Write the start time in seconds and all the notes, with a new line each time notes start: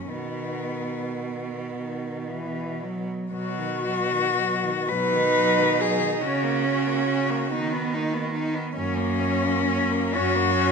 Already playing: F#3 A#3 C#4
0.10 B2 D#3 B3
1.75 D#3
2.29 E3
2.83 F#3
3.32 B2 F#3 F#4
3.59 D#3
3.85 F#3
4.11 D#3
4.38 F#3
4.64 D#3
4.88 B2 F#3 D#4 B4
5.13 D#3
5.36 F#3
5.58 D#3
5.80 F#3 G#4
6.01 D#3
6.21 C#3 C#4 F#4
6.44 A#3
6.65 C#4
6.87 A#3
7.08 C#4
7.30 A#3
7.51 D#3 B3 D#4
7.73 B3
7.93 A#3 D#4
8.14 B3
8.34 B3 D#4
8.55 B3
8.76 F#2 A#3 C#4
8.97 A#3
9.20 C#4
9.44 A#3
9.68 C#4
9.91 A#3
10.13 F#2 C#4 F#4
10.36 A#3
10.58 C#4